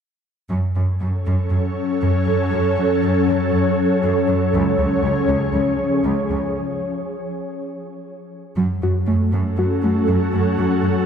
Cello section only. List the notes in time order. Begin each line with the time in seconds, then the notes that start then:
0.50 F#2
0.76 F#2
1.00 F#2
1.26 F#2
1.51 F#2
2.01 F#2
2.26 F#2
2.52 F#2
2.77 F#2
3.03 F#2
3.28 F#2
3.52 F#2
4.03 F#2
4.28 F#2
4.54 C#2
4.79 C#2
5.04 C#2
5.29 C#2
5.53 C#2
6.05 C#2
6.30 C#2
8.57 F#2
8.82 F#2
9.07 F#2
9.33 F#2
9.58 F#2
9.83 F#2
10.08 F#2
10.33 F#2
10.58 F#2
10.83 F#2